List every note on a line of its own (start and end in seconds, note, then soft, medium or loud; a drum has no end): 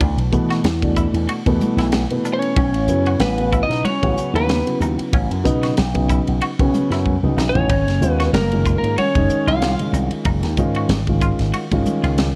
0.00 0.16 D2 medium
0.00 0.22 B2 medium
0.00 0.22 E3 medium
0.00 0.23 A3 medium
0.00 0.23 D4 medium
0.00 0.18 D4 medium
0.00 kick loud
0.00 ride medium
0.00 muted conga soft
0.17 0.30 B1 medium
0.17 ride medium
0.32 0.60 B2 loud
0.32 0.59 E3 medium
0.32 0.61 E3 medium
0.32 0.61 A3 medium
0.32 0.61 B3 loud
0.32 kick medium
0.32 hi-hat pedal medium
0.50 0.67 F#4 medium
0.50 snare soft
0.50 ride medium
0.64 1.06 E2 medium
0.64 0.73 A3 soft
0.64 0.74 B3 soft
0.64 snare loud
0.64 ride medium
0.64 high conga medium
0.82 1.36 B2 medium
0.82 1.36 E3 medium
0.82 1.36 A3 medium
0.82 1.36 D4 medium
0.82 kick medium
0.82 ride medium
0.96 1.14 E4 medium
0.96 kick medium
0.96 hi-hat pedal medium
1.14 1.26 E2 medium
1.14 ride medium
1.29 1.46 F#4 medium
1.29 ride medium
1.29 muted conga soft
1.46 1.58 E2 medium
1.46 2.00 B2 loud
1.46 2.00 E3 loud
1.46 2.00 A3 loud
1.46 2.00 B3 loud
1.46 kick medium
1.46 ride medium
1.60 hi-hat pedal medium
1.60 muted conga soft
1.60 high conga medium
1.77 2.04 B1 medium
1.77 1.95 E4 medium
1.77 snare soft
1.77 ride medium
1.92 snare loud
1.92 ride medium
1.92 high conga medium
2.10 2.57 B2 medium
2.10 2.57 E3 medium
2.10 2.57 A3 medium
2.10 2.57 B3 medium
2.10 ride medium
2.25 2.42 D4 medium
2.25 hi-hat pedal medium
2.25 muted conga soft
2.33 3.18 C#4 medium
2.33 3.21 C#5 medium
2.42 ride medium
2.56 2.73 B1 medium
2.56 2.74 C#4 medium
2.56 kick medium
2.56 ride medium
2.56 muted conga soft
2.73 2.89 A1 medium
2.73 ride medium
2.87 3.14 F#2 medium
2.87 3.17 C#3 medium
2.87 3.17 F#3 medium
2.87 3.17 B3 medium
2.87 3.17 E4 medium
2.87 hi-hat pedal medium
3.06 3.24 F#4 medium
3.06 ride medium
3.19 3.61 A1 medium
3.19 3.29 B3 soft
3.19 3.62 B3 medium
3.19 3.30 F#4 soft
3.19 3.65 B4 medium
3.19 snare loud
3.19 ride medium
3.19 high conga medium
3.38 3.92 C#3 medium
3.38 3.92 F#3 medium
3.38 3.93 B3 medium
3.38 3.93 E4 medium
3.38 ride medium
3.52 3.70 E4 medium
3.52 kick medium
3.52 hi-hat pedal medium
3.63 3.83 D#5 medium
3.67 3.82 B2 medium
3.67 3.85 D#4 medium
3.67 ride soft
3.71 snare soft
3.84 4.02 F#4 medium
3.84 4.35 C#5 loud
3.84 muted slap bass stroke soft
3.84 ride medium
3.84 muted conga soft
3.84 high conga medium
3.88 4.33 C#4 medium
4.02 4.15 A1 medium
4.02 4.56 C#3 medium
4.02 4.56 F#3 medium
4.02 4.56 B3 medium
4.02 4.56 F#4 medium
4.02 kick medium
4.02 ride medium
4.17 hi-hat pedal medium
4.17 muted conga soft
4.34 4.61 D#2 loud
4.34 4.52 E4 medium
4.34 4.78 B4 medium
4.34 ride medium
4.40 4.80 B3 medium
4.49 snare loud
4.49 ride medium
4.49 high conga medium
4.66 5.34 C#3 medium
4.66 5.35 F#3 medium
4.66 5.34 B3 medium
4.66 5.35 E4 medium
4.66 ride medium
4.80 4.95 D#2 medium
4.80 4.99 D#4 medium
4.80 hi-hat pedal medium
4.80 muted conga soft
4.98 muted slap bass stroke soft
4.98 ride medium
5.13 5.28 A1 medium
5.13 5.31 C#4 medium
5.13 kick loud
5.13 ride medium
5.13 muted conga soft
5.31 5.42 F#2 medium
5.31 ride medium
5.44 5.72 B2 medium
5.44 5.72 C#3 loud
5.44 5.72 F#3 loud
5.44 5.73 B3 loud
5.44 5.73 D#4 loud
5.44 kick medium
5.44 hi-hat pedal medium
5.63 5.80 F#4 medium
5.63 snare soft
5.63 ride medium
5.76 6.19 B1 medium
5.76 5.85 B3 soft
5.76 5.86 E4 soft
5.76 snare loud
5.76 ride medium
5.76 high conga medium
5.94 6.48 C#3 medium
5.94 6.48 F#3 medium
5.94 6.48 B3 medium
5.94 6.48 D#4 medium
5.94 kick medium
5.94 ride medium
6.09 6.26 E4 medium
6.09 kick medium
6.09 hi-hat pedal medium
6.27 6.39 B1 medium
6.27 ride medium
6.41 6.58 F#4 medium
6.41 ride medium
6.41 muted conga soft
6.59 6.71 B1 medium
6.59 7.13 C#3 loud
6.59 7.13 F#3 medium
6.59 7.13 B3 medium
6.59 7.13 C#4 loud
6.59 kick medium
6.59 ride medium
6.74 hi-hat pedal medium
6.74 muted conga soft
6.74 high conga medium
6.90 7.17 F#2 medium
6.90 7.09 E4 medium
6.90 snare soft
6.90 ride medium
7.06 kick medium
7.06 high conga medium
7.23 7.36 C#2 medium
7.23 7.69 C#3 medium
7.23 7.69 F#3 medium
7.23 7.69 B3 medium
7.23 7.70 D#4 medium
7.23 high conga soft
7.37 7.53 B1 medium
7.37 7.55 D#4 medium
7.37 snare medium
7.37 hi-hat pedal medium
7.37 low conga medium
7.49 8.09 C#4 medium
7.49 8.12 C#5 medium
7.55 7.68 A1 medium
7.55 floor tom medium
7.55 low conga medium
7.70 7.88 G#1 medium
7.70 7.86 D#4 medium
7.70 kick loud
7.70 ride medium
7.70 muted conga soft
7.88 8.02 F#1 medium
7.88 snare soft
7.88 ride medium
8.00 8.28 D#2 medium
8.00 8.29 D#3 medium
8.00 8.29 G#3 medium
8.00 8.29 C#4 medium
8.00 8.30 F4 loud
8.00 hi-hat pedal medium
8.09 8.31 B3 medium
8.09 8.34 B4 medium
8.20 8.36 F#4 medium
8.20 snare soft
8.20 ride medium
8.33 8.75 F#1 medium
8.33 8.74 A#3 medium
8.33 8.42 C#4 soft
8.33 8.77 A#4 medium
8.33 snare loud
8.33 ride medium
8.33 high conga medium
8.52 9.05 D#3 medium
8.52 9.05 G#3 medium
8.52 9.05 C#4 medium
8.52 9.06 F4 medium
8.52 ride medium
8.65 8.83 F4 medium
8.65 kick medium
8.65 hi-hat pedal medium
8.78 8.97 A#3 medium
8.78 8.98 A#4 medium
8.83 8.95 G#2 medium
8.83 ride medium
8.98 9.45 C#4 medium
8.98 9.15 F#4 medium
8.98 9.49 C#5 medium
8.98 muted slap bass stroke soft
8.98 ride medium
8.98 muted conga soft
8.98 high conga medium
9.15 9.27 F#1 medium
9.15 9.69 D#3 medium
9.15 9.69 G#3 medium
9.15 9.70 C#4 medium
9.15 9.70 D#4 loud
9.15 kick medium
9.15 ride medium
9.29 hi-hat pedal medium
9.29 muted conga soft
9.47 9.74 C2 medium
9.47 9.64 F4 medium
9.47 9.92 F4 medium
9.47 9.91 F5 loud
9.47 ride soft
9.62 snare loud
9.62 ride medium
9.62 high conga medium
9.79 10.47 D#3 medium
9.79 10.47 G#3 medium
9.79 10.48 C#4 medium
9.79 10.48 F4 medium
9.79 ride medium
9.93 10.08 C2 medium
9.93 10.11 D#4 medium
9.93 hi-hat pedal medium
9.93 muted conga soft
10.11 muted slap bass stroke soft
10.11 ride medium
10.25 10.40 F#1 loud
10.25 10.43 D#4 medium
10.25 kick loud
10.25 ride medium
10.25 muted conga soft
10.43 10.55 D#2 medium
10.43 snare soft
10.43 ride medium
10.57 10.84 G#2 medium
10.57 10.86 D#3 loud
10.57 10.86 G#3 loud
10.57 10.86 C#4 loud
10.57 10.86 F4 loud
10.57 kick medium
10.57 hi-hat pedal medium
10.75 10.93 F#4 medium
10.75 ride medium
10.89 11.31 G#1 medium
10.89 10.99 C#4 soft
10.89 10.99 F#4 soft
10.89 snare loud
10.89 ride medium
10.89 high conga medium
11.07 11.62 D#3 medium
11.07 11.61 G#3 medium
11.07 11.62 C#4 medium
11.07 11.62 F4 medium
11.07 kick medium
11.07 ride soft
11.21 11.39 F4 medium
11.21 kick medium
11.21 hi-hat pedal medium
11.39 11.51 G#1 medium
11.39 snare soft
11.39 ride medium
11.54 11.71 F#4 medium
11.54 ride medium
11.54 muted conga soft
11.71 11.83 G#1 medium
11.71 12.25 D#3 loud
11.71 12.26 G#3 medium
11.71 12.26 C#4 medium
11.71 12.26 F4 loud
11.71 kick medium
11.71 ride medium
11.86 hi-hat pedal medium
11.86 muted conga soft
11.86 high conga medium
12.03 12.30 C#2 medium
12.03 12.21 F4 medium
12.03 ride medium
12.18 snare medium
12.18 ride medium
12.18 high conga medium